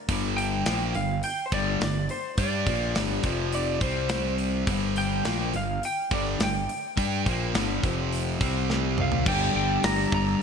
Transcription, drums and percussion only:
0.09 kick medium
0.09 open hi-hat medium
0.38 open hi-hat medium
0.66 snare loud
0.66 open hi-hat medium
0.95 open hi-hat soft
1.23 open hi-hat medium
1.52 kick loud
1.52 open hi-hat medium
1.81 snare loud
1.81 open hi-hat medium
2.09 open hi-hat medium
2.38 kick medium
2.38 open hi-hat medium
2.67 kick loud
2.67 open hi-hat medium
2.95 snare medium
2.95 open hi-hat medium
3.23 kick medium
3.23 open hi-hat medium
3.52 open hi-hat medium
3.81 kick loud
3.81 open hi-hat medium
4.09 snare loud
4.09 open hi-hat medium
4.38 open hi-hat medium
4.67 kick loud
4.67 open hi-hat medium
4.96 open hi-hat medium
5.25 snare loud
5.25 open hi-hat medium
5.54 open hi-hat soft
5.83 open hi-hat medium
6.11 kick loud
6.11 open hi-hat medium
6.40 snare medium
6.40 open hi-hat medium
6.69 open hi-hat medium
6.97 kick medium
6.97 open hi-hat medium
7.26 kick medium
7.26 open hi-hat soft
7.55 snare medium
7.55 open hi-hat medium
7.83 kick medium
7.83 open hi-hat soft
8.12 open hi-hat medium
8.41 kick loud
8.41 open hi-hat medium
8.70 snare medium
8.98 mid tom medium
9.12 floor tom medium
9.26 kick loud
9.26 crash loud
9.84 snare loud
9.84 open hi-hat medium
10.12 kick medium

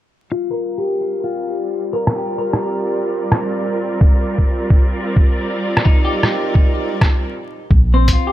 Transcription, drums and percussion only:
2.07 cross-stick medium
2.53 cross-stick soft
3.32 cross-stick medium
4.01 kick loud
4.38 kick medium
4.70 kick loud
5.16 kick loud
5.77 cross-stick soft
5.86 kick loud
6.23 cross-stick soft
6.55 kick loud
7.01 kick loud
7.01 cross-stick medium
7.71 kick loud
8.08 kick medium
8.08 closed hi-hat medium

